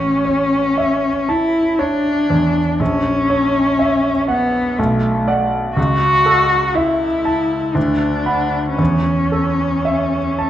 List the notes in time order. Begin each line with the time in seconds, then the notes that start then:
Already playing: A1 C#4
0.25 C#5
0.78 E5
1.29 E4 A5
1.79 D4 C#5
2.30 E2
2.80 A#1 C#4
3.30 C#5
3.79 E5
4.28 B3 F#5
4.79 B1 A3
5.28 D5 F#5
5.76 C#2 F#4
6.26 A4
6.75 E4 E5
7.25 A5
7.75 D2 D4
8.26 F#5 B5
8.77 E2 C#4
9.32 A4
9.85 E5
10.39 A5